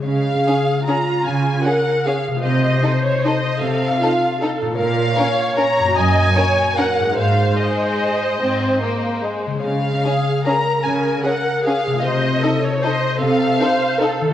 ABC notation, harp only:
X:1
M:3/4
L:1/8
Q:1/4=150
K:Db
V:1 name="Harp"
[D,A,Ad]6- | [D,A,Ad]6 | [C,=A,Fe]6- | [C,=A,Fe]6 |
[B,,B,Fd]6 | [G,,B,Gd]6 | [A,,A,Ec]6- | [A,,A,Ec]6 |
[D,A,Dd]6- | [D,A,Dd]6 | [C,=A,Fe]6- | [C,=A,Fe]6 |]